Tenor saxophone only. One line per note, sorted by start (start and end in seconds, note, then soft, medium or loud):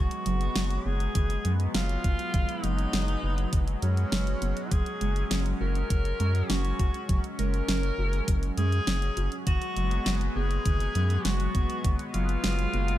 0.00 0.87 F#4 loud
0.85 1.63 G#4 loud
1.75 2.65 F4 loud
2.64 3.71 D#4 loud
3.83 4.73 C#4 loud
4.71 5.49 G#4 loud
5.61 6.51 A#4 loud
6.50 7.27 F#4 loud
7.39 8.46 A#4 loud
8.58 9.35 G#4 loud
9.47 10.24 F#4 loud
10.36 11.26 G#4 loud
11.25 12.02 F#4 loud
12.14 12.98 F4 loud